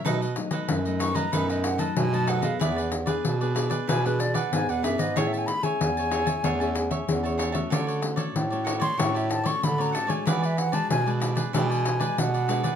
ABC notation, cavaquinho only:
X:1
M:4/4
L:1/16
Q:1/4=94
K:Emix
V:1 name="Cavaquinho"
[^DAB^d] [ABd] z [ABd]2 [ABd] [DABd] [ABd] [DABd] [ABd] z [ABd]2 [ABd] [DABd] [ABd] | [EGBd] [GBd] z [GBd]2 [GBd] [EGBd] [GBd] [EGBd] [GBd] z [GBd]2 [GBd] [EGBd] [GBd] | [Gcea] [cea] z [ce]2 [cea] [Gcea] [cea] [Gcea] [cea] z [ce]2 [cea] [Gcea] [cea] | [FAcd] [Acd] z [Acd]2 [Acd] [FAcd] [Acd] [FAcd] [Acd] z [Acd]2 [Acd] [FAcd] [Acd] |
[EGBd] [GBd] z [GBd]2 [GBd] [EGBd] [GBd] [EGBd] [GBd] z [GBd]2 [GBd] [EGBd] [GBd] |]